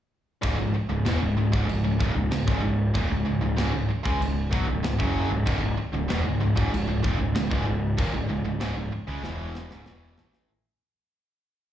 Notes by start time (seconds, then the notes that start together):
0.42 C#1 C#2 G#2, kick, china
0.59 C#1 C#2 G#2
0.74 muted picked electric bass stroke, muted distorted electric guitar stroke
0.90 C#1 C#2 G#2
1.05 E1 E2 B2, snare, china
1.21 C#1 C#2 G#2
1.37 C#1 C#2 G#2
1.53 C#1 C#2 G#2, kick
1.69 C#1 C#2 G#2, china
1.84 C#1 C#2 G#2
2.00 D#1 D#2 A#2, kick
2.16 C#1 C#2 G#2
2.31 C#1 C#2 G#2, snare, china
2.47 C#1 C#2 G#2, kick
2.63 C#1 C#2 G#2
2.94 D#1 D#2 A#2, kick, china
3.10 C#1 C#2 G#2
3.25 C#1 C#2 G#2
3.42 C#1 C#2 G#2
3.57 C#1 C#2 G#2, snare, china
3.73 C#1 C#2 G#2
3.89 muted picked electric bass stroke, muted distorted electric guitar stroke
4.04 C#2 C#3 G#3, kick
4.20 C#1 C#2 G#2, china
4.51 B1 B2 F#3, kick
4.67 C#1 C#2 G#2
4.83 C#1 C#2 G#2, snare, china
4.99 F#1 F#2 C#3 F#3, kick
5.30 C#1 C#2 G#2
5.46 C#1 C#2 G#2, kick, china
5.61 C#1 C#2 G#2
5.77 muted picked electric bass stroke, muted distorted electric guitar stroke
5.93 C#1 C#2 G#2
6.09 E1 E2 B2, snare, china
6.24 C#1 C#2 G#2
6.40 C#1 C#2 G#2
6.56 C#1 C#2 G#2, kick
6.72 C#1 C#2 G#2, china
6.87 C#1 C#2 G#2
7.04 D#1 D#2 A#2, kick
7.19 C#1 C#2 G#2
7.34 C#1 C#2 G#2, snare, china
7.50 C#1 C#2 G#2, kick
7.66 C#1 C#2 G#2
7.97 D#1 D#2 A#2, kick, china
8.13 C#1 C#2 G#2
8.29 C#1 C#2 G#2
8.44 C#1 C#2 G#2
8.60 C#1 C#2 G#2, snare, china
8.76 C#1 C#2 G#2
8.92 muted distorted electric guitar stroke, muted picked electric bass stroke
9.07 C#2 C#3 G#3
9.23 E1 E2 B2 E3, snare
9.55 snare
9.70 C#1 C#2 G#2, snare
9.86 E1 E2 B2 E3, snare
10.17 A1 A2 E3 A3, snare
10.33 snare